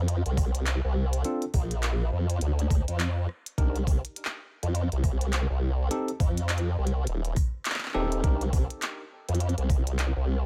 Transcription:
0.00 0.23 F2 loud
0.08 closed hi-hat medium
0.26 0.81 C2 medium
0.26 closed hi-hat soft
0.37 kick loud
0.37 cross-stick medium
0.37 open hi-hat medium
0.55 closed hi-hat medium
0.67 clap loud
0.67 closed hi-hat medium
0.84 1.23 C2 loud
1.13 closed hi-hat medium
1.25 1.44 C4 medium
1.25 1.44 D4 medium
1.25 1.44 F4 medium
1.25 1.44 A4 medium
1.25 closed hi-hat medium
1.42 closed hi-hat soft
1.54 2.10 A#1 loud
1.54 kick loud
1.54 open hi-hat medium
1.71 closed hi-hat medium
1.83 clap loud
1.83 closed hi-hat medium
2.12 2.40 F2 medium
2.30 closed hi-hat medium
2.41 2.85 D2 medium
2.41 closed hi-hat medium
2.59 closed hi-hat soft
2.70 kick loud
2.70 cross-stick medium
2.70 open hi-hat medium
2.88 3.27 F2 loud
2.88 closed hi-hat medium
3.00 clap loud
3.00 closed hi-hat medium
3.29 cross-stick soft
3.46 closed hi-hat medium
3.58 4.02 C2 loud
3.58 3.77 D4 medium
3.58 3.77 D#4 medium
3.58 3.77 G4 medium
3.58 3.77 A#4 loud
3.58 kick loud
3.58 closed hi-hat medium
3.76 closed hi-hat soft
3.87 kick loud
3.87 open hi-hat medium
4.05 closed hi-hat medium
4.16 closed hi-hat medium
4.25 clap loud
4.63 4.89 F2 loud
4.63 closed hi-hat medium
4.75 closed hi-hat medium
4.92 5.47 C2 medium
4.92 closed hi-hat soft
5.04 kick loud
5.04 cross-stick medium
5.04 open hi-hat medium
5.21 closed hi-hat medium
5.33 clap loud
5.33 closed hi-hat medium
5.50 5.89 C2 medium
5.91 6.10 C4 medium
5.91 6.10 D#4 medium
5.91 6.10 G4 medium
5.91 6.10 A4 loud
5.91 closed hi-hat medium
6.08 closed hi-hat soft
6.20 6.76 F2 loud
6.20 kick loud
6.20 open hi-hat medium
6.38 closed hi-hat medium
6.49 clap loud
6.49 closed hi-hat medium
6.58 closed hi-hat soft
6.78 7.06 C2 medium
6.87 closed hi-hat soft
7.07 7.35 D#1 medium
7.07 closed hi-hat medium
7.25 closed hi-hat soft
7.36 kick loud
7.36 cross-stick soft
7.36 open hi-hat medium
7.65 clap loud
7.65 closed hi-hat medium
7.70 clap loud
7.74 clap medium
7.78 clap medium
7.83 clap medium
7.86 clap soft
7.89 clap soft
7.92 8.22 D#1 loud
7.92 8.21 C4 loud
7.92 8.21 D#4 medium
7.92 8.21 G4 loud
7.92 8.21 A4 loud
7.92 cross-stick soft
7.92 clap soft
8.12 closed hi-hat medium
8.24 8.68 C2 loud
8.24 8.43 D4 medium
8.24 8.43 D#4 medium
8.24 8.43 G4 medium
8.24 8.43 A#4 loud
8.24 kick loud
8.24 closed hi-hat medium
8.41 closed hi-hat soft
8.53 kick loud
8.53 open hi-hat medium
8.70 closed hi-hat medium
8.82 clap loud
8.82 closed hi-hat medium
9.29 9.55 F2 medium
9.29 closed hi-hat soft
9.35 closed hi-hat soft
9.40 closed hi-hat medium
9.49 closed hi-hat soft
9.58 10.13 C2 medium
9.58 closed hi-hat soft
9.70 kick loud
9.70 cross-stick medium
9.70 open hi-hat medium
9.87 closed hi-hat medium
9.99 clap loud
9.99 closed hi-hat medium
10.16 10.46 C2 loud

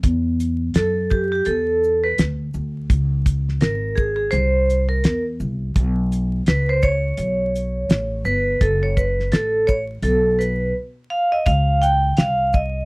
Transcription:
0.03 0.71 E2 loud
0.03 kick loud
0.03 closed hi-hat medium
0.40 closed hi-hat medium
0.40 shaker medium
0.74 1.43 F#2 medium
0.74 1.12 A4 medium
0.74 snare loud
0.74 closed hi-hat medium
1.10 1.31 G4 medium
1.10 kick medium
1.10 shaker medium
1.32 1.47 G4 medium
1.45 2.15 E2 medium
1.45 2.05 A4 medium
1.45 closed hi-hat medium
1.84 shaker soft
2.04 2.20 B4 medium
2.18 2.52 D2 medium
2.18 snare loud
2.18 closed hi-hat medium
2.54 2.88 D2 medium
2.54 shaker medium
2.90 3.58 C#2 loud
2.90 kick loud
2.90 closed hi-hat medium
3.26 kick loud
3.26 closed hi-hat medium
3.26 shaker medium
3.49 snare soft
3.61 4.29 G#1 medium
3.61 3.98 A#4 medium
3.61 snare loud
3.61 closed hi-hat medium
3.95 4.15 G#4 medium
3.95 kick medium
3.95 shaker medium
4.16 4.32 G#4 medium
4.31 5.00 C2 loud
4.31 4.85 C5 loud
4.31 closed hi-hat medium
4.70 closed hi-hat soft
4.70 shaker soft
4.89 5.22 A#4 medium
5.04 5.38 E2 medium
5.04 snare loud
5.04 closed hi-hat medium
5.40 5.74 C2 medium
5.40 shaker soft
5.76 6.43 B1 loud
5.76 kick loud
5.76 closed hi-hat medium
6.12 closed hi-hat medium
6.12 shaker medium
6.46 7.15 C#2 medium
6.46 6.70 B4 medium
6.46 snare loud
6.46 closed hi-hat medium
6.69 6.83 C5 loud
6.82 8.22 C#5 loud
6.82 kick medium
6.82 shaker medium
7.17 7.86 B1 medium
7.17 closed hi-hat medium
7.55 closed hi-hat soft
7.55 shaker soft
7.89 8.23 A1 medium
7.89 snare loud
7.89 closed hi-hat medium
8.25 8.59 G1 medium
8.25 8.62 B4 medium
8.25 shaker medium
8.61 9.29 F#1 loud
8.61 8.83 A4 medium
8.61 kick loud
8.61 closed hi-hat medium
8.83 8.89 C#5 medium
8.97 9.34 B4 medium
8.97 kick medium
8.97 shaker medium
9.20 snare soft
9.31 10.00 A1 medium
9.31 9.65 A4 medium
9.31 snare loud
9.31 closed hi-hat medium
9.67 9.84 C#5 medium
9.67 kick medium
9.67 shaker medium
10.03 10.71 B1 loud
10.03 10.40 A4 medium
10.03 closed hi-hat medium
10.39 10.72 B4 medium
10.39 closed hi-hat soft
10.39 shaker soft
11.10 11.33 F5 medium
11.32 11.47 D#5 medium
11.46 12.14 C#2 loud
11.46 11.83 F5 loud
11.46 kick loud
11.46 closed hi-hat medium
11.82 12.19 G5 medium
11.82 closed hi-hat medium
11.82 shaker medium
12.17 12.85 C2 medium
12.17 12.55 F5 medium
12.17 snare loud
12.17 closed hi-hat medium
12.53 12.85 D#5 medium
12.53 kick medium
12.53 shaker medium

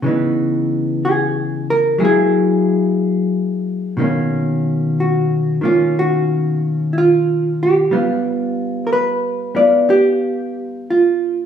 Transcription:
0.02 1.98 C#3 soft
0.02 1.98 E3 soft
0.02 1.99 B3 soft
0.07 1.99 D#4 soft
1.05 1.69 G#4 medium
1.70 2.01 A#4 medium
1.98 3.97 F#3 soft
1.98 3.97 A#3 soft
1.98 3.97 E4 soft
1.98 3.97 G#4 medium
2.05 3.62 G#4 medium
3.97 7.92 B2 soft
3.97 5.60 D#3 soft
3.97 5.62 A#3 soft
4.01 5.64 C#4 soft
5.00 5.65 F#4 medium
5.61 7.91 D#3 soft
5.61 7.92 A#3 soft
5.61 7.92 C#4 soft
5.61 5.94 F4 soft
5.99 6.93 F#4 medium
6.93 6.96 E4 soft
6.98 7.62 F4 medium
7.63 8.90 G4 medium
7.91 11.46 G3 soft
7.91 9.54 B3 soft
7.91 9.55 F4 soft
8.87 8.90 A#4 medium
8.93 9.56 B4 medium
9.55 11.46 B3 soft
9.55 11.46 F4 soft
9.55 9.89 D5 medium
9.90 10.89 G4 medium
10.90 11.46 F4 medium

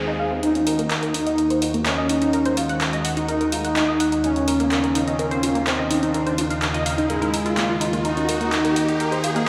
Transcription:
0.00 0.39 D#2 medium
0.00 0.39 D#3 medium
0.00 0.48 D#3 medium
0.00 0.39 G#3 medium
0.00 0.48 D#4 medium
0.00 0.39 F4 medium
0.00 0.34 G#4 loud
0.00 noise sweep medium
0.07 0.11 D#4 loud
0.19 0.23 F5 medium
0.31 0.38 C4 medium
0.43 9.49 D#2 medium
0.43 9.49 D#3 medium
0.43 2.31 A#3 medium
0.43 0.50 D#4 medium
0.43 1.77 D#4 loud
0.43 4.20 F#4 medium
0.43 closed hi-hat soft
0.43 riser medium
0.55 0.65 C#4 medium
0.55 closed hi-hat soft
0.67 0.74 A#4 medium
0.67 open hi-hat loud
0.79 0.85 A#3 loud
0.79 closed hi-hat soft
0.91 0.95 A#4 medium
0.91 clap loud
0.91 closed hi-hat soft
1.03 1.09 A#4 medium
1.03 closed hi-hat soft
1.14 1.21 D#4 medium
1.14 open hi-hat loud
1.27 1.36 D#5 medium
1.27 closed hi-hat soft
1.38 1.45 A#4 medium
1.38 closed hi-hat soft
1.50 1.60 C5 loud
1.50 closed hi-hat soft
1.62 1.66 F4 medium
1.62 open hi-hat loud
1.74 1.81 A#3 loud
1.74 closed hi-hat soft
1.86 2.48 C#4 loud
1.86 1.90 A#4 medium
1.86 clap loud
1.86 closed hi-hat soft
1.98 2.08 D#5 loud
2.09 2.16 D#4 medium
2.09 open hi-hat loud
2.22 2.31 D#4 loud
2.22 closed hi-hat soft
2.33 4.22 G#3 medium
2.33 2.40 A#4 medium
2.33 closed hi-hat soft
2.46 2.55 C5 loud
2.46 closed hi-hat soft
2.57 2.61 F4 medium
2.57 open hi-hat loud
2.69 2.73 F#5 medium
2.69 closed hi-hat soft
2.81 2.85 A#4 medium
2.81 clap loud
2.81 closed hi-hat soft
2.93 3.03 D#5 loud
2.93 closed hi-hat soft
3.05 3.12 F#5 medium
3.05 open hi-hat loud
3.17 3.27 D#4 loud
3.17 closed hi-hat soft
3.28 4.15 D#4 loud
3.28 3.35 A#4 medium
3.28 closed hi-hat soft
3.41 3.45 A#4 loud
3.41 closed hi-hat soft
3.52 3.56 F4 medium
3.52 open hi-hat loud
3.65 3.68 F#5 medium
3.65 closed hi-hat soft
3.76 3.83 D#4 loud
3.76 clap loud
3.76 closed hi-hat soft
3.88 3.98 D#5 loud
4.00 4.07 F#5 medium
4.00 open hi-hat loud
4.12 4.22 D#4 loud
4.12 closed hi-hat soft
4.24 8.01 C#3 medium
4.24 5.57 C#4 loud
4.24 4.31 D#4 medium
4.24 8.01 F4 medium
4.24 closed hi-hat soft
4.36 4.46 C#4 medium
4.36 closed hi-hat soft
4.48 4.55 A#4 medium
4.48 open hi-hat loud
4.60 4.66 A#3 loud
4.60 closed hi-hat soft
4.71 4.76 A#4 medium
4.71 clap loud
4.71 closed hi-hat soft
4.84 4.90 A#4 medium
4.84 closed hi-hat soft
4.95 5.02 D#4 medium
4.95 open hi-hat loud
5.07 5.17 D#5 medium
5.07 closed hi-hat soft
5.19 5.26 A#4 medium
5.19 closed hi-hat soft
5.31 5.41 C5 loud
5.31 closed hi-hat soft
5.43 5.47 F4 medium
5.43 open hi-hat loud
5.55 5.62 A#3 loud
5.55 closed hi-hat soft
5.67 6.29 C4 loud
5.67 5.71 A#4 medium
5.67 clap loud
5.67 closed hi-hat soft
5.79 5.89 D#5 loud
5.91 5.97 D#4 loud
5.91 open hi-hat loud
6.03 6.12 D#4 loud
6.03 closed hi-hat soft
6.14 6.21 A#4 medium
6.14 closed hi-hat soft
6.27 6.36 C5 loud
6.27 closed hi-hat soft
6.38 6.42 F4 medium
6.38 open hi-hat loud
6.50 6.54 F5 medium
6.50 closed hi-hat soft
6.62 6.66 A#4 medium
6.62 clap loud
6.62 closed hi-hat soft
6.74 6.84 D#5 loud
6.74 closed hi-hat soft
6.86 6.93 F5 medium
6.86 open hi-hat loud
6.98 7.08 D#4 loud
6.98 closed hi-hat soft
7.09 7.96 G#3 loud
7.09 7.16 A#4 medium
7.09 closed hi-hat soft
7.22 7.26 A#4 loud
7.22 closed hi-hat soft
7.33 7.40 D#4 medium
7.33 open hi-hat loud
7.46 7.55 F4 loud
7.46 closed hi-hat soft
7.57 7.67 A#3 loud
7.57 clap loud
7.57 closed hi-hat soft
7.69 7.73 F4 loud
7.81 7.88 D#4 medium
7.81 open hi-hat loud
7.93 8.00 A#3 medium
7.93 closed hi-hat soft
8.05 9.49 A#3 medium
8.05 9.38 D#4 loud
8.05 8.12 D#4 medium
8.05 9.49 F#4 medium
8.05 closed hi-hat soft
8.17 8.27 C#4 medium
8.17 closed hi-hat soft
8.29 8.35 A#4 medium
8.29 mid tom loud
8.29 open hi-hat loud
8.41 8.47 A#3 loud
8.41 closed hi-hat soft
8.52 8.56 A#4 medium
8.52 clap loud
8.52 closed hi-hat soft
8.65 8.71 A#4 medium
8.65 closed hi-hat soft
8.76 8.83 D#4 medium
8.76 open hi-hat loud
8.88 8.98 D#5 medium
8.88 closed hi-hat soft
9.00 9.07 A#4 medium
9.00 closed hi-hat soft
9.12 9.22 C5 loud
9.12 closed hi-hat soft
9.24 9.28 F4 medium
9.24 open hi-hat loud
9.36 9.42 A#3 loud
9.36 closed hi-hat soft

